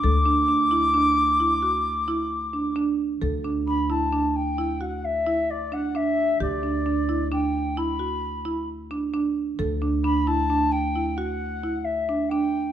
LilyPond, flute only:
\new Staff \with { instrumentName = "Flute" } { \time 7/4 \key d \major \tempo 4 = 132 d'''1. r4 | r4 b''8 a''4 g''4 fis''8 e''4 d''8 fis''8 e''4 | d''2 g''4 b''2 r2 | r4 b''8 a''4 g''4 fis''4. e''4 g''4 | }